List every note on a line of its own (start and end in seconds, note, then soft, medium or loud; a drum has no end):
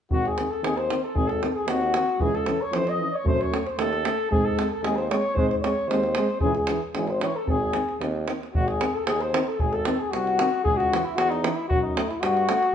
0.11 0.40 G#1 medium
0.11 0.22 D#3 medium
0.11 0.22 C4 medium
0.11 0.25 F#4 medium
0.11 0.29 F#4 medium
0.11 davul low medium
0.24 0.53 G#4 medium
0.24 0.52 G#4 medium
0.24 davul high soft
0.38 0.48 D#3 medium
0.38 0.49 C4 medium
0.38 davul high medium
0.50 0.66 A4 medium
0.50 0.65 A4 medium
0.62 0.91 D#2 medium
0.62 0.73 D#3 medium
0.62 0.75 C4 medium
0.62 0.78 G#4 medium
0.62 0.79 G#4 medium
0.62 davul high medium
0.76 1.03 C5 medium
0.76 davul high soft
0.90 1.00 D#3 medium
0.90 1.01 C4 medium
0.90 davul high medium
1.03 1.17 A4 medium
1.03 1.16 A4 medium
1.14 1.43 G#1 medium
1.14 1.26 D#3 medium
1.14 1.27 C4 medium
1.14 1.29 G#4 medium
1.14 1.33 G#4 medium
1.14 davul low medium
1.28 1.51 A4 medium
1.28 1.52 A4 medium
1.28 davul high soft
1.42 1.52 D#3 medium
1.42 1.54 C4 medium
1.42 davul high medium
1.51 1.68 G#4 medium
1.51 1.56 A4 medium
1.51 1.59 A4 medium
1.57 1.69 G#4 medium
1.66 1.96 D#2 medium
1.66 1.78 D#3 medium
1.66 2.22 F#4 medium
1.66 2.25 F#4 medium
1.66 davul high medium
1.71 1.81 C4 medium
1.81 davul high soft
1.93 2.04 D#3 medium
1.93 davul high medium
1.98 2.07 C4 medium
2.18 2.48 C#2 medium
2.18 2.30 E3 medium
2.18 2.36 G#4 medium
2.18 davul low medium
2.23 2.34 C#4 medium
2.23 2.37 G#4 medium
2.34 2.63 A4 medium
2.34 2.65 A4 medium
2.34 davul high soft
2.46 2.57 E3 medium
2.46 2.59 C#4 medium
2.46 davul high medium
2.62 2.77 C#5 medium
2.62 2.75 C#5 medium
2.71 3.01 F2 medium
2.71 2.83 E3 medium
2.71 2.89 C5 medium
2.71 2.91 C5 medium
2.71 davul high medium
2.76 2.86 C#4 medium
2.87 3.15 D#5 medium
2.87 3.17 D#5 medium
2.87 davul high soft
2.99 3.09 E3 medium
2.99 3.12 C#4 soft
3.13 3.26 C#5 medium
3.13 3.27 C#5 medium
3.25 3.54 F#2 medium
3.25 3.36 A3 medium
3.25 3.37 C#4 medium
3.25 3.42 C5 medium
3.25 3.43 C5 medium
3.25 davul low loud
3.41 3.69 C#5 medium
3.41 3.68 C#5 medium
3.41 davul high soft
3.51 3.61 A3 soft
3.51 3.64 C#4 medium
3.51 davul high medium
3.66 3.78 C5 medium
3.66 3.79 C5 medium
3.66 davul high soft
3.78 4.07 D#2 medium
3.78 3.88 A3 medium
3.78 3.90 C#4 soft
3.78 4.27 A4 medium
3.78 4.28 A4 medium
3.78 davul high medium
3.93 davul high soft
4.04 4.15 A3 medium
4.04 4.16 C#4 soft
4.04 davul high medium
4.30 4.60 G#2 medium
4.30 4.41 G#3 soft
4.30 4.43 C4 medium
4.30 4.47 G#4 medium
4.30 4.46 G#4 medium
4.30 davul low medium
4.45 4.70 A4 medium
4.45 4.71 A4 medium
4.57 4.67 G#3 soft
4.57 4.67 C4 medium
4.57 davul high medium
4.71 4.83 A4 medium
4.71 4.85 A4 medium
4.83 5.12 D#2 medium
4.83 4.94 G#3 medium
4.83 4.95 C4 medium
4.83 4.97 G#4 medium
4.83 5.03 G#4 medium
4.83 davul high medium
4.96 5.09 C5 medium
4.96 davul high soft
5.01 5.12 C5 medium
5.09 5.20 G#3 medium
5.09 5.22 C4 soft
5.09 5.36 C#5 medium
5.09 davul high medium
5.13 5.40 C#5 medium
5.34 5.64 G#2 medium
5.34 5.47 G#3 medium
5.34 5.48 C4 medium
5.34 5.48 C5 loud
5.34 davul low medium
5.39 5.51 C5 medium
5.49 5.55 C5 medium
5.49 5.58 C5 medium
5.49 davul high soft
5.61 5.73 G#3 medium
5.61 5.73 C4 medium
5.61 5.89 C#5 medium
5.61 davul high medium
5.66 5.93 C#5 medium
5.88 6.17 D#2 medium
5.88 6.00 G#3 medium
5.88 6.00 C4 medium
5.88 6.40 C5 medium
5.88 6.43 C5 medium
5.88 davul high medium
6.03 davul high soft
6.15 6.27 G#3 medium
6.15 6.27 C4 medium
6.15 davul high medium
6.40 6.70 C#2 medium
6.40 6.54 E3 medium
6.40 6.53 C#4 medium
6.40 6.54 G#4 medium
6.40 6.56 G#4 medium
6.40 davul low medium
6.55 6.80 G#4 medium
6.55 6.82 G#4 medium
6.55 davul high soft
6.67 6.80 E3 medium
6.67 6.79 C#4 medium
6.67 davul high medium
6.94 7.24 G#1 medium
6.94 7.07 E3 medium
6.94 7.06 C#4 medium
6.94 7.09 G#4 medium
6.94 7.11 G#4 medium
6.94 davul high medium
7.07 7.24 C5 medium
7.07 davul high soft
7.20 7.33 E3 medium
7.20 7.31 C#4 medium
7.20 7.37 C#5 medium
7.20 davul high medium
7.35 7.47 A4 medium
7.35 7.48 A4 medium
7.47 7.76 G#1 medium
7.47 7.58 D#3 medium
7.47 7.58 C4 medium
7.47 7.97 G#4 medium
7.47 7.98 G#4 medium
7.47 davul low medium
7.73 7.85 D#3 medium
7.73 7.85 C4 medium
7.73 davul high medium
7.89 davul high soft
8.00 8.29 D#2 medium
8.00 8.12 D#3 medium
8.00 8.11 C4 medium
8.00 davul high medium
8.28 8.38 D#3 medium
8.28 8.38 C4 soft
8.28 davul high medium
8.43 davul high soft
8.53 8.83 G#1 medium
8.53 8.68 F#4 medium
8.53 8.70 F#4 medium
8.53 davul low medium
8.67 8.94 G#4 medium
8.67 8.97 G#4 medium
8.67 davul high soft
8.79 8.90 D#3 medium
8.79 8.91 C4 medium
8.79 davul high medium
8.92 9.05 A4 medium
8.92 9.06 A4 medium
9.05 9.36 D#2 medium
9.05 9.21 G#4 medium
9.05 9.23 G#4 medium
9.05 davul high medium
9.19 9.46 C5 medium
9.19 9.50 C5 medium
9.19 davul high soft
9.33 9.43 D#3 medium
9.33 9.44 C4 medium
9.33 davul high medium
9.45 9.60 A4 medium
9.45 9.62 A4 medium
9.58 9.89 G#1 medium
9.58 9.74 G#4 medium
9.58 9.76 G#4 medium
9.58 davul low medium
9.72 9.99 A4 medium
9.72 10.02 A4 medium
9.72 davul high soft
9.85 9.96 D#3 medium
9.85 9.97 C4 medium
9.85 davul high medium
9.98 10.11 G#4 medium
9.98 10.13 G#4 medium
10.10 10.41 C2 medium
10.10 10.62 F#4 medium
10.10 10.63 F#4 medium
10.10 davul high medium
10.27 davul high soft
10.39 10.49 D#3 medium
10.39 10.50 C4 medium
10.39 davul high medium
10.63 10.95 C#2 medium
10.63 10.79 G#4 medium
10.63 10.78 G#4 medium
10.63 davul low medium
10.77 11.05 F#4 medium
10.77 11.06 F#4 medium
10.77 davul high soft
10.91 11.02 E3 medium
10.91 11.02 C#4 medium
10.91 davul high medium
11.04 11.17 E4 medium
11.04 11.18 E4 medium
11.15 11.46 E2 loud
11.15 11.31 F#4 medium
11.15 11.30 F#4 medium
11.15 davul high medium
11.29 11.57 D#4 medium
11.29 davul high soft
11.43 11.54 E3 medium
11.43 11.54 C#4 medium
11.43 davul high medium
11.55 11.67 E4 medium
11.55 11.68 E4 medium
11.68 11.99 F#2 medium
11.68 11.81 F#4 medium
11.68 11.82 F#4 medium
11.68 davul low medium
11.82 12.10 D#4 medium
11.82 12.11 D#4 medium
11.96 12.06 A3 medium
11.96 12.07 C#4 medium
11.96 davul high medium
12.08 12.22 E4 medium
12.08 davul high soft
12.20 12.51 G2 loud
12.20 12.75 F#4 medium
12.20 davul high medium
12.37 davul high soft
12.49 12.59 A3 medium
12.49 12.59 C#4 soft
12.49 davul high medium
12.63 davul high soft